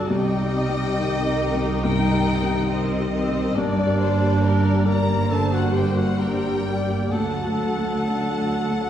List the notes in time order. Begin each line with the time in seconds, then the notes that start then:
Already playing: D3 G3 D4 G4 A4
0.08 C2 C3 G3 D#4 G4 D#5 G5
0.40 G4
0.69 G3
0.96 D#3 D#4
1.27 G4
1.55 G3
1.84 G2 D#4 D#5 G5
2.14 G4
2.43 G3
2.70 D#3 C4 D#4 D#5
3.00 G4
3.14 C4 C5
3.29 G3
3.57 G1 G2 G3 A#3 D4 D5
3.87 G4
4.00 C5
4.16 A#3
4.43 A#3 D4 A#4
4.73 G4
4.87 A#4 D5 A#5
5.01 A#3
5.30 D3 G3 A4 C5 A5
5.53 F#4 F#5
5.60 G4
5.75 G4 G5
5.89 A#3
5.97 F#4 F#5
6.19 C4 D4 G4 A#4 G5
6.51 G4
6.66 A#3 D5
6.81 A#3
7.12 D2 F#3 A3 A4 F#5 A5
7.45 F#4
7.77 A3
8.07 D4
8.38 F#4
8.69 A3